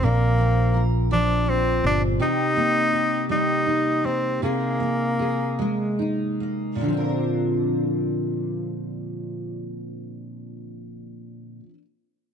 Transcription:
Already playing: steel-string acoustic guitar F3 C4 D4
0.03 fingered electric bass A#1, steel-string acoustic guitar A#2 A#4, tenor saxophone A#3
0.38 steel-string acoustic guitar C4
0.74 steel-string acoustic guitar A#4
1.11 steel-string acoustic guitar F3, tenor saxophone D4
1.46 tenor saxophone C4, steel-string acoustic guitar D4
1.84 fingered electric bass G1, steel-string acoustic guitar C4, tenor saxophone D4
2.20 steel-string acoustic guitar C3 G4, tenor saxophone D#4
2.56 steel-string acoustic guitar A#3
2.93 steel-string acoustic guitar G4
3.29 steel-string acoustic guitar G3, tenor saxophone D#4
3.66 steel-string acoustic guitar D#4
4.04 steel-string acoustic guitar A#3, tenor saxophone C4
4.42 steel-string acoustic guitar C3 G#4, tenor saxophone A#3
4.80 steel-string acoustic guitar A#3
5.19 steel-string acoustic guitar G#4
5.59 steel-string acoustic guitar G#3
5.99 steel-string acoustic guitar D#4
6.40 steel-string acoustic guitar A#3
6.75 steel-string acoustic guitar A#2
6.81 steel-string acoustic guitar D3
6.86 steel-string acoustic guitar F3
6.90 steel-string acoustic guitar C4
6.94 steel-string acoustic guitar D4 A#4

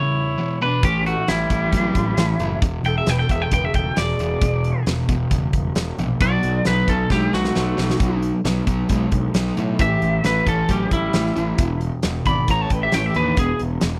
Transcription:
Already playing: distorted electric guitar E2 C#3, viola E4, lead electric guitar C#5
0.38 distorted electric guitar E2 B2
0.61 distorted electric guitar E2 B2, viola D4, lead electric guitar B4
0.83 picked electric bass A1, distorted electric guitar A2 E3, viola C#4, lead electric guitar G4, kick, closed hi-hat
1.06 viola A3, lead electric guitar F#4, closed hi-hat
1.28 picked electric bass A1, distorted electric guitar A2 E3, viola G3, lead electric guitar E4, snare, closed hi-hat
1.50 picked electric bass A1, distorted electric guitar A2 E3, kick, closed hi-hat
1.73 picked electric bass A1, distorted electric guitar A2 F#3, kick, closed hi-hat
1.95 picked electric bass A1, kick, closed hi-hat
2.17 picked electric bass A1, distorted electric guitar A2 E3, snare, closed hi-hat
2.39 picked electric bass F#1, distorted electric guitar A2 E3, closed hi-hat
2.62 picked electric bass E1, distorted electric guitar E2 B2, kick, closed hi-hat
2.84 picked electric bass E1, viola A4, lead electric guitar G5, closed hi-hat
2.98 viola G#4, lead electric guitar E5
3.06 picked electric bass E1, distorted electric guitar E2 B2, viola B4, lead electric guitar G5, snare, closed hi-hat
3.19 viola A4, lead electric guitar G5
3.29 picked electric bass E1, distorted electric guitar E2 B2, viola G#4, lead electric guitar E5, kick, closed hi-hat
3.42 viola A4, lead electric guitar G5
3.51 picked electric bass E1, distorted electric guitar E2 C#3, viola B4, lead electric guitar G5, kick, closed hi-hat
3.65 viola G#4, lead electric guitar E5
3.74 picked electric bass E1, viola A4, lead electric guitar G5, kick, closed hi-hat
3.96 picked electric bass E1, distorted electric guitar E2 B2, viola G#4, lead electric guitar D5, snare, closed hi-hat
4.08 snare
4.19 picked electric bass E1, distorted electric guitar E2 B2, closed hi-hat
4.42 picked electric bass E1, distorted electric guitar E2 B2, kick, closed hi-hat
4.64 closed hi-hat
4.87 picked electric bass E1, distorted electric guitar E2 B2, snare, closed hi-hat
5.09 picked electric bass E1, distorted electric guitar E2 B2, kick, closed hi-hat
5.31 picked electric bass E1, distorted electric guitar E2 C#3, kick, closed hi-hat
5.53 picked electric bass E1, kick, closed hi-hat
5.75 picked electric bass E1, distorted electric guitar E2 B2, snare, closed hi-hat
5.98 picked electric bass A#1, distorted electric guitar E2 B2, closed hi-hat
6.21 picked electric bass B1, distorted electric guitar B2 F#3, viola F#4, lead electric guitar D5, kick, closed hi-hat
6.43 picked electric bass B1, closed hi-hat
6.65 picked electric bass B1, distorted electric guitar B2 F#3, viola D#4, lead electric guitar B4, snare, closed hi-hat
6.88 picked electric bass B1, distorted electric guitar B2 F#3, viola C#4, lead electric guitar A4, kick, closed hi-hat
7.10 picked electric bass B1, distorted electric guitar B2 G#3, viola A3, lead electric guitar G4, kick, snare
7.33 picked electric bass B1, viola A3, lead electric guitar F#4, snare
7.44 snare
7.56 picked electric bass B1, distorted electric guitar B2 F#3, snare
7.78 picked electric bass B1, distorted electric guitar B2 F#3, snare
7.90 snare
8.00 picked electric bass B1, distorted electric guitar B2 F#3, kick, closed hi-hat
8.22 closed hi-hat
8.45 picked electric bass B1, distorted electric guitar B2 F#3, snare, closed hi-hat
8.67 picked electric bass B1, distorted electric guitar B2 F#3, kick, closed hi-hat
8.89 picked electric bass B1, distorted electric guitar B2 G#3, kick, closed hi-hat
9.12 picked electric bass B1, kick, closed hi-hat
9.34 picked electric bass B1, distorted electric guitar B2 F#3, snare, closed hi-hat
9.47 snare
9.57 picked electric bass A2, distorted electric guitar B2 F#3, closed hi-hat
9.79 picked electric bass A1, distorted electric guitar A2 E3, viola G4, lead electric guitar E5, kick, closed hi-hat
10.02 picked electric bass A1, closed hi-hat
10.24 picked electric bass A1, distorted electric guitar A2 E3, viola E4, lead electric guitar B4, snare, closed hi-hat
10.47 picked electric bass A1, distorted electric guitar A2 E3, viola C#4, lead electric guitar A4, kick, closed hi-hat
10.69 picked electric bass A1, distorted electric guitar A2 F#3, viola C#4, lead electric guitar G4, kick, closed hi-hat
10.91 picked electric bass A1, viola G3, lead electric guitar E4, kick, closed hi-hat
11.13 picked electric bass A1, distorted electric guitar A2 E3, snare, closed hi-hat
11.26 snare
11.36 picked electric bass A1, distorted electric guitar A2 E3, closed hi-hat
11.58 picked electric bass E1, distorted electric guitar E2 B2, kick, closed hi-hat
11.81 closed hi-hat
12.03 picked electric bass E1, distorted electric guitar E2 B2, snare, closed hi-hat
12.25 picked electric bass G#1, distorted electric guitar E2 B2, viola D5, lead electric guitar B5, kick, closed hi-hat
12.48 picked electric bass A1, distorted electric guitar A2 E3, viola C#5, lead electric guitar A#5, kick, closed hi-hat
12.61 viola C#5, lead electric guitar A5
12.70 picked electric bass A1, viola B4, lead electric guitar G5, kick, closed hi-hat
12.83 viola G4, lead electric guitar E5
12.92 picked electric bass A1, distorted electric guitar A2 E3, lead electric guitar G5, snare, closed hi-hat
12.97 viola C#5
13.06 viola G4, lead electric guitar E5
13.14 picked electric bass D#2, distorted electric guitar A2 E3, lead electric guitar B4, closed hi-hat
13.19 viola D4
13.37 picked electric bass E1, distorted electric guitar E2 B2, lead electric guitar G#4, kick, closed hi-hat
13.41 viola B3
13.59 picked electric bass E1, closed hi-hat
13.81 picked electric bass E1, distorted electric guitar E2 B2, snare, closed hi-hat

